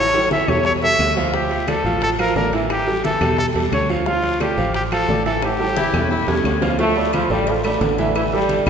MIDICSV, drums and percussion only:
0, 0, Header, 1, 2, 480
1, 0, Start_track
1, 0, Tempo, 340909
1, 1881, Time_signature, 4, 2, 24, 8
1, 12247, End_track
2, 0, Start_track
2, 0, Title_t, "Drums"
2, 194, Note_on_c, 9, 60, 33
2, 201, Note_on_c, 9, 65, 85
2, 208, Note_on_c, 9, 63, 37
2, 335, Note_off_c, 9, 60, 0
2, 342, Note_off_c, 9, 65, 0
2, 348, Note_off_c, 9, 63, 0
2, 435, Note_on_c, 9, 60, 55
2, 438, Note_on_c, 9, 63, 98
2, 441, Note_on_c, 9, 65, 65
2, 442, Note_on_c, 9, 73, 71
2, 576, Note_off_c, 9, 60, 0
2, 579, Note_off_c, 9, 63, 0
2, 582, Note_off_c, 9, 65, 0
2, 583, Note_off_c, 9, 73, 0
2, 673, Note_on_c, 9, 60, 33
2, 679, Note_on_c, 9, 63, 31
2, 679, Note_on_c, 9, 64, 75
2, 679, Note_on_c, 9, 73, 58
2, 680, Note_on_c, 9, 75, 69
2, 681, Note_on_c, 9, 65, 77
2, 814, Note_off_c, 9, 60, 0
2, 820, Note_off_c, 9, 63, 0
2, 820, Note_off_c, 9, 64, 0
2, 820, Note_off_c, 9, 73, 0
2, 821, Note_off_c, 9, 75, 0
2, 822, Note_off_c, 9, 65, 0
2, 913, Note_on_c, 9, 60, 65
2, 920, Note_on_c, 9, 63, 33
2, 921, Note_on_c, 9, 74, 67
2, 1054, Note_off_c, 9, 60, 0
2, 1061, Note_off_c, 9, 63, 0
2, 1062, Note_off_c, 9, 74, 0
2, 1158, Note_on_c, 9, 60, 31
2, 1165, Note_on_c, 9, 63, 31
2, 1299, Note_off_c, 9, 60, 0
2, 1305, Note_off_c, 9, 63, 0
2, 1399, Note_on_c, 9, 73, 73
2, 1401, Note_on_c, 9, 66, 83
2, 1402, Note_on_c, 9, 60, 35
2, 1402, Note_on_c, 9, 61, 86
2, 1403, Note_on_c, 9, 63, 34
2, 1406, Note_on_c, 9, 75, 60
2, 1539, Note_off_c, 9, 73, 0
2, 1542, Note_off_c, 9, 66, 0
2, 1543, Note_off_c, 9, 60, 0
2, 1543, Note_off_c, 9, 61, 0
2, 1544, Note_off_c, 9, 63, 0
2, 1547, Note_off_c, 9, 75, 0
2, 1640, Note_on_c, 9, 63, 61
2, 1641, Note_on_c, 9, 73, 68
2, 1644, Note_on_c, 9, 66, 99
2, 1781, Note_off_c, 9, 63, 0
2, 1782, Note_off_c, 9, 73, 0
2, 1785, Note_off_c, 9, 66, 0
2, 1881, Note_on_c, 9, 60, 70
2, 1882, Note_on_c, 9, 74, 63
2, 1884, Note_on_c, 9, 63, 32
2, 2022, Note_off_c, 9, 60, 0
2, 2022, Note_off_c, 9, 74, 0
2, 2025, Note_off_c, 9, 63, 0
2, 2123, Note_on_c, 9, 60, 31
2, 2126, Note_on_c, 9, 65, 67
2, 2128, Note_on_c, 9, 63, 34
2, 2263, Note_off_c, 9, 60, 0
2, 2267, Note_off_c, 9, 65, 0
2, 2269, Note_off_c, 9, 63, 0
2, 2357, Note_on_c, 9, 73, 69
2, 2359, Note_on_c, 9, 60, 56
2, 2360, Note_on_c, 9, 63, 99
2, 2367, Note_on_c, 9, 65, 93
2, 2367, Note_on_c, 9, 75, 61
2, 2498, Note_off_c, 9, 73, 0
2, 2500, Note_off_c, 9, 60, 0
2, 2501, Note_off_c, 9, 63, 0
2, 2507, Note_off_c, 9, 75, 0
2, 2508, Note_off_c, 9, 65, 0
2, 2602, Note_on_c, 9, 73, 61
2, 2603, Note_on_c, 9, 60, 36
2, 2609, Note_on_c, 9, 63, 32
2, 2743, Note_off_c, 9, 73, 0
2, 2744, Note_off_c, 9, 60, 0
2, 2750, Note_off_c, 9, 63, 0
2, 2841, Note_on_c, 9, 60, 67
2, 2846, Note_on_c, 9, 63, 35
2, 2846, Note_on_c, 9, 74, 72
2, 2847, Note_on_c, 9, 65, 65
2, 2982, Note_off_c, 9, 60, 0
2, 2986, Note_off_c, 9, 63, 0
2, 2987, Note_off_c, 9, 74, 0
2, 2988, Note_off_c, 9, 65, 0
2, 3081, Note_on_c, 9, 63, 33
2, 3084, Note_on_c, 9, 65, 82
2, 3087, Note_on_c, 9, 60, 34
2, 3087, Note_on_c, 9, 75, 65
2, 3222, Note_off_c, 9, 63, 0
2, 3225, Note_off_c, 9, 65, 0
2, 3228, Note_off_c, 9, 60, 0
2, 3228, Note_off_c, 9, 75, 0
2, 3322, Note_on_c, 9, 63, 78
2, 3322, Note_on_c, 9, 66, 66
2, 3325, Note_on_c, 9, 73, 69
2, 3328, Note_on_c, 9, 60, 31
2, 3328, Note_on_c, 9, 61, 89
2, 3463, Note_off_c, 9, 63, 0
2, 3463, Note_off_c, 9, 66, 0
2, 3466, Note_off_c, 9, 73, 0
2, 3468, Note_off_c, 9, 60, 0
2, 3468, Note_off_c, 9, 61, 0
2, 3563, Note_on_c, 9, 65, 72
2, 3565, Note_on_c, 9, 73, 68
2, 3704, Note_off_c, 9, 65, 0
2, 3706, Note_off_c, 9, 73, 0
2, 3802, Note_on_c, 9, 65, 88
2, 3803, Note_on_c, 9, 60, 66
2, 3806, Note_on_c, 9, 63, 31
2, 3806, Note_on_c, 9, 74, 68
2, 3807, Note_on_c, 9, 75, 59
2, 3943, Note_off_c, 9, 65, 0
2, 3944, Note_off_c, 9, 60, 0
2, 3947, Note_off_c, 9, 63, 0
2, 3947, Note_off_c, 9, 74, 0
2, 3947, Note_off_c, 9, 75, 0
2, 4043, Note_on_c, 9, 63, 35
2, 4051, Note_on_c, 9, 60, 34
2, 4183, Note_off_c, 9, 63, 0
2, 4191, Note_off_c, 9, 60, 0
2, 4280, Note_on_c, 9, 65, 62
2, 4286, Note_on_c, 9, 73, 71
2, 4287, Note_on_c, 9, 60, 61
2, 4290, Note_on_c, 9, 63, 93
2, 4421, Note_off_c, 9, 65, 0
2, 4427, Note_off_c, 9, 73, 0
2, 4428, Note_off_c, 9, 60, 0
2, 4431, Note_off_c, 9, 63, 0
2, 4522, Note_on_c, 9, 65, 94
2, 4525, Note_on_c, 9, 60, 33
2, 4527, Note_on_c, 9, 63, 31
2, 4527, Note_on_c, 9, 64, 73
2, 4527, Note_on_c, 9, 73, 60
2, 4527, Note_on_c, 9, 75, 76
2, 4663, Note_off_c, 9, 65, 0
2, 4666, Note_off_c, 9, 60, 0
2, 4668, Note_off_c, 9, 63, 0
2, 4668, Note_off_c, 9, 64, 0
2, 4668, Note_off_c, 9, 73, 0
2, 4668, Note_off_c, 9, 75, 0
2, 4764, Note_on_c, 9, 63, 35
2, 4764, Note_on_c, 9, 64, 69
2, 4765, Note_on_c, 9, 60, 72
2, 4765, Note_on_c, 9, 74, 70
2, 4904, Note_off_c, 9, 63, 0
2, 4904, Note_off_c, 9, 64, 0
2, 4905, Note_off_c, 9, 74, 0
2, 4906, Note_off_c, 9, 60, 0
2, 5002, Note_on_c, 9, 60, 34
2, 5003, Note_on_c, 9, 63, 31
2, 5006, Note_on_c, 9, 65, 69
2, 5142, Note_off_c, 9, 60, 0
2, 5143, Note_off_c, 9, 63, 0
2, 5147, Note_off_c, 9, 65, 0
2, 5242, Note_on_c, 9, 73, 64
2, 5244, Note_on_c, 9, 60, 35
2, 5244, Note_on_c, 9, 61, 84
2, 5248, Note_on_c, 9, 65, 81
2, 5248, Note_on_c, 9, 75, 62
2, 5249, Note_on_c, 9, 63, 36
2, 5383, Note_off_c, 9, 73, 0
2, 5385, Note_off_c, 9, 60, 0
2, 5385, Note_off_c, 9, 61, 0
2, 5389, Note_off_c, 9, 65, 0
2, 5389, Note_off_c, 9, 75, 0
2, 5390, Note_off_c, 9, 63, 0
2, 5484, Note_on_c, 9, 73, 70
2, 5624, Note_off_c, 9, 73, 0
2, 5721, Note_on_c, 9, 60, 71
2, 5725, Note_on_c, 9, 74, 73
2, 5729, Note_on_c, 9, 63, 33
2, 5862, Note_off_c, 9, 60, 0
2, 5866, Note_off_c, 9, 74, 0
2, 5870, Note_off_c, 9, 63, 0
2, 5958, Note_on_c, 9, 60, 32
2, 5963, Note_on_c, 9, 65, 66
2, 5977, Note_on_c, 9, 63, 38
2, 6099, Note_off_c, 9, 60, 0
2, 6104, Note_off_c, 9, 65, 0
2, 6118, Note_off_c, 9, 63, 0
2, 6199, Note_on_c, 9, 60, 59
2, 6204, Note_on_c, 9, 65, 83
2, 6205, Note_on_c, 9, 73, 70
2, 6207, Note_on_c, 9, 63, 92
2, 6210, Note_on_c, 9, 75, 60
2, 6340, Note_off_c, 9, 60, 0
2, 6345, Note_off_c, 9, 65, 0
2, 6346, Note_off_c, 9, 73, 0
2, 6348, Note_off_c, 9, 63, 0
2, 6351, Note_off_c, 9, 75, 0
2, 6444, Note_on_c, 9, 60, 36
2, 6444, Note_on_c, 9, 73, 65
2, 6449, Note_on_c, 9, 63, 31
2, 6585, Note_off_c, 9, 60, 0
2, 6585, Note_off_c, 9, 73, 0
2, 6590, Note_off_c, 9, 63, 0
2, 6680, Note_on_c, 9, 60, 63
2, 6686, Note_on_c, 9, 65, 62
2, 6686, Note_on_c, 9, 74, 70
2, 6689, Note_on_c, 9, 63, 37
2, 6821, Note_off_c, 9, 60, 0
2, 6826, Note_off_c, 9, 74, 0
2, 6827, Note_off_c, 9, 65, 0
2, 6830, Note_off_c, 9, 63, 0
2, 6922, Note_on_c, 9, 60, 34
2, 6927, Note_on_c, 9, 75, 58
2, 6929, Note_on_c, 9, 65, 89
2, 6931, Note_on_c, 9, 63, 34
2, 7062, Note_off_c, 9, 60, 0
2, 7068, Note_off_c, 9, 75, 0
2, 7070, Note_off_c, 9, 65, 0
2, 7071, Note_off_c, 9, 63, 0
2, 7159, Note_on_c, 9, 60, 39
2, 7159, Note_on_c, 9, 61, 85
2, 7166, Note_on_c, 9, 63, 83
2, 7166, Note_on_c, 9, 73, 70
2, 7300, Note_off_c, 9, 60, 0
2, 7300, Note_off_c, 9, 61, 0
2, 7307, Note_off_c, 9, 63, 0
2, 7307, Note_off_c, 9, 73, 0
2, 7400, Note_on_c, 9, 73, 79
2, 7407, Note_on_c, 9, 65, 72
2, 7541, Note_off_c, 9, 73, 0
2, 7548, Note_off_c, 9, 65, 0
2, 7638, Note_on_c, 9, 60, 68
2, 7641, Note_on_c, 9, 74, 66
2, 7642, Note_on_c, 9, 65, 99
2, 7642, Note_on_c, 9, 75, 55
2, 7644, Note_on_c, 9, 63, 28
2, 7779, Note_off_c, 9, 60, 0
2, 7781, Note_off_c, 9, 74, 0
2, 7783, Note_off_c, 9, 65, 0
2, 7783, Note_off_c, 9, 75, 0
2, 7785, Note_off_c, 9, 63, 0
2, 7880, Note_on_c, 9, 60, 32
2, 7883, Note_on_c, 9, 65, 83
2, 7886, Note_on_c, 9, 63, 34
2, 8021, Note_off_c, 9, 60, 0
2, 8024, Note_off_c, 9, 65, 0
2, 8027, Note_off_c, 9, 63, 0
2, 8116, Note_on_c, 9, 73, 76
2, 8118, Note_on_c, 9, 60, 97
2, 8125, Note_on_c, 9, 63, 94
2, 8257, Note_off_c, 9, 73, 0
2, 8258, Note_off_c, 9, 60, 0
2, 8265, Note_off_c, 9, 63, 0
2, 8357, Note_on_c, 9, 73, 69
2, 8358, Note_on_c, 9, 60, 70
2, 8362, Note_on_c, 9, 75, 72
2, 8366, Note_on_c, 9, 63, 31
2, 8366, Note_on_c, 9, 64, 81
2, 8366, Note_on_c, 9, 66, 100
2, 8498, Note_off_c, 9, 73, 0
2, 8499, Note_off_c, 9, 60, 0
2, 8503, Note_off_c, 9, 75, 0
2, 8506, Note_off_c, 9, 66, 0
2, 8507, Note_off_c, 9, 63, 0
2, 8507, Note_off_c, 9, 64, 0
2, 8597, Note_on_c, 9, 74, 72
2, 8598, Note_on_c, 9, 61, 82
2, 8600, Note_on_c, 9, 63, 34
2, 8738, Note_off_c, 9, 74, 0
2, 8739, Note_off_c, 9, 61, 0
2, 8741, Note_off_c, 9, 63, 0
2, 8844, Note_on_c, 9, 66, 86
2, 8846, Note_on_c, 9, 63, 33
2, 8984, Note_off_c, 9, 66, 0
2, 8987, Note_off_c, 9, 63, 0
2, 9079, Note_on_c, 9, 73, 67
2, 9083, Note_on_c, 9, 66, 90
2, 9084, Note_on_c, 9, 61, 82
2, 9084, Note_on_c, 9, 75, 68
2, 9220, Note_off_c, 9, 73, 0
2, 9224, Note_off_c, 9, 66, 0
2, 9225, Note_off_c, 9, 61, 0
2, 9225, Note_off_c, 9, 75, 0
2, 9320, Note_on_c, 9, 61, 83
2, 9322, Note_on_c, 9, 73, 76
2, 9325, Note_on_c, 9, 66, 93
2, 9461, Note_off_c, 9, 61, 0
2, 9462, Note_off_c, 9, 73, 0
2, 9466, Note_off_c, 9, 66, 0
2, 9558, Note_on_c, 9, 56, 102
2, 9562, Note_on_c, 9, 74, 74
2, 9572, Note_on_c, 9, 63, 34
2, 9699, Note_off_c, 9, 56, 0
2, 9703, Note_off_c, 9, 74, 0
2, 9713, Note_off_c, 9, 63, 0
2, 9804, Note_on_c, 9, 68, 87
2, 9945, Note_off_c, 9, 68, 0
2, 10039, Note_on_c, 9, 56, 68
2, 10039, Note_on_c, 9, 73, 74
2, 10045, Note_on_c, 9, 75, 64
2, 10047, Note_on_c, 9, 66, 60
2, 10047, Note_on_c, 9, 68, 109
2, 10049, Note_on_c, 9, 63, 108
2, 10180, Note_off_c, 9, 56, 0
2, 10180, Note_off_c, 9, 73, 0
2, 10186, Note_off_c, 9, 75, 0
2, 10188, Note_off_c, 9, 66, 0
2, 10188, Note_off_c, 9, 68, 0
2, 10190, Note_off_c, 9, 63, 0
2, 10280, Note_on_c, 9, 73, 68
2, 10286, Note_on_c, 9, 63, 34
2, 10420, Note_off_c, 9, 73, 0
2, 10427, Note_off_c, 9, 63, 0
2, 10516, Note_on_c, 9, 56, 113
2, 10524, Note_on_c, 9, 74, 75
2, 10525, Note_on_c, 9, 63, 35
2, 10527, Note_on_c, 9, 68, 81
2, 10657, Note_off_c, 9, 56, 0
2, 10665, Note_off_c, 9, 74, 0
2, 10666, Note_off_c, 9, 63, 0
2, 10668, Note_off_c, 9, 68, 0
2, 10759, Note_on_c, 9, 56, 71
2, 10765, Note_on_c, 9, 75, 65
2, 10766, Note_on_c, 9, 63, 35
2, 10767, Note_on_c, 9, 68, 113
2, 10900, Note_off_c, 9, 56, 0
2, 10906, Note_off_c, 9, 63, 0
2, 10906, Note_off_c, 9, 75, 0
2, 10908, Note_off_c, 9, 68, 0
2, 10999, Note_on_c, 9, 56, 75
2, 11001, Note_on_c, 9, 63, 91
2, 11007, Note_on_c, 9, 73, 67
2, 11008, Note_on_c, 9, 66, 82
2, 11140, Note_off_c, 9, 56, 0
2, 11142, Note_off_c, 9, 63, 0
2, 11148, Note_off_c, 9, 73, 0
2, 11149, Note_off_c, 9, 66, 0
2, 11242, Note_on_c, 9, 56, 80
2, 11245, Note_on_c, 9, 73, 72
2, 11247, Note_on_c, 9, 63, 86
2, 11249, Note_on_c, 9, 68, 92
2, 11383, Note_off_c, 9, 56, 0
2, 11386, Note_off_c, 9, 73, 0
2, 11388, Note_off_c, 9, 63, 0
2, 11389, Note_off_c, 9, 68, 0
2, 11483, Note_on_c, 9, 56, 99
2, 11483, Note_on_c, 9, 63, 36
2, 11485, Note_on_c, 9, 74, 71
2, 11486, Note_on_c, 9, 75, 68
2, 11488, Note_on_c, 9, 68, 104
2, 11623, Note_off_c, 9, 56, 0
2, 11624, Note_off_c, 9, 63, 0
2, 11626, Note_off_c, 9, 74, 0
2, 11627, Note_off_c, 9, 75, 0
2, 11629, Note_off_c, 9, 68, 0
2, 11722, Note_on_c, 9, 63, 38
2, 11863, Note_off_c, 9, 63, 0
2, 11957, Note_on_c, 9, 63, 107
2, 11960, Note_on_c, 9, 56, 68
2, 11964, Note_on_c, 9, 66, 56
2, 11964, Note_on_c, 9, 68, 70
2, 11964, Note_on_c, 9, 73, 80
2, 12098, Note_off_c, 9, 63, 0
2, 12101, Note_off_c, 9, 56, 0
2, 12104, Note_off_c, 9, 66, 0
2, 12104, Note_off_c, 9, 68, 0
2, 12105, Note_off_c, 9, 73, 0
2, 12196, Note_on_c, 9, 56, 65
2, 12200, Note_on_c, 9, 63, 33
2, 12200, Note_on_c, 9, 64, 75
2, 12203, Note_on_c, 9, 68, 106
2, 12204, Note_on_c, 9, 75, 81
2, 12247, Note_off_c, 9, 56, 0
2, 12247, Note_off_c, 9, 63, 0
2, 12247, Note_off_c, 9, 64, 0
2, 12247, Note_off_c, 9, 68, 0
2, 12247, Note_off_c, 9, 75, 0
2, 12247, End_track
0, 0, End_of_file